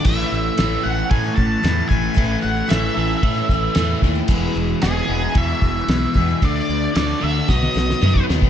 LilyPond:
<<
  \new Staff \with { instrumentName = "Lead electric guitar" } { \time 4/4 \key a \major \tempo 4 = 113 e''4. fis''8 gis''8 a''4 gis''8~ | gis''8 fis''8 e''2~ e''8 r8 | r4 gis'4 e''2 | d''4 d''8 e''8 dis''4. r8 | }
  \new Staff \with { instrumentName = "Steel-string acoustic guitar" } { \time 4/4 \key a \major <a, e a cis' e'>8 <e a cis' e'>8 <a, e a cis' e'>8. <a cis' e'>8 <a cis' e'>16 <e a cis' e'>8 <a, e a cis' e'>8 <e a cis' e'>16 <a cis' e'>16 | <a, e a cis' e'>8 <e a cis' e'>8 <a, e a cis' e'>8. <a cis' e'>8 <a cis' e'>16 <e a cis' e'>8 <a, e a cis' e'>8 <e a cis' e'>16 <a cis' e'>16 | <e, b, e gis b e'>8 <e gis b e'>8 <e, b, e gis b e'>8. <e gis b e'>8 <e gis b e'>16 <e gis b e'>8 <e, b, e gis b e'>8 <e gis b e'>16 <e gis b e'>16 | <d a d' fis'>8 <d a d' fis'>8 <d a d' fis'>8. <a d' fis'>16 <b, dis a b fis'>16 <a b fis'>16 <dis a b fis'>8 <b, dis a b fis'>8 <dis a b fis'>16 <a b fis'>16 | }
  \new Staff \with { instrumentName = "Overdriven electric guitar" } { \clef bass \time 4/4 \key a \major <a, e a>4 <a, e a>8 <a, e a>8 <a, e a>4 <a, e a>8 <a, e a>8 | <a, e a>4 <a, e a>8 <a, e a>8 <a, e a>4 <a, e a>8 <a, e a>8 | <e, b, e>4 <e, b, e>8 <e, b, e>8 <e, b, e>4 <e, b, e>8 <e, b, e>8 | <d a d'>4 <d a d'>8 <d a d'>8 <b, fis b>4 <b, fis b>8 <b, fis b>8 | }
  \new Staff \with { instrumentName = "Fingered electric bass" } { \clef bass \time 4/4 \key a \major a,,8 a,,8 a,,8 a,,8 a,8 a,,8 e,8 a,,8 | a,,8 a,,8 a,,8 a,,8 a,8 a,,8 e,8 dis,8 | e,,8 e,,8 e,,8 e,,8 e,8 e,,8 b,,8 e,8 | d,8 d,8 d,8 d,8 b,,8 b,,8 fis,8 dis,8 | }
  \new DrumStaff \with { instrumentName = "Drums" } \drummode { \time 4/4 <cymc bd>4 <rb sn>4 <bd rb>8 bd8 <rb sn>8 bd8 | <bd rb>4 <rb sn>4 <bd rb>8 bd8 <rb sn>8 bd8 | <cymc bd>4 <rb sn>4 <bd rb>8 bd8 <rb sn>8 bd8 | <bd rb>4 <rb sn>4 <bd sn>16 tommh16 sn16 sn16 toml16 bd16 sn16 bd16 | }
>>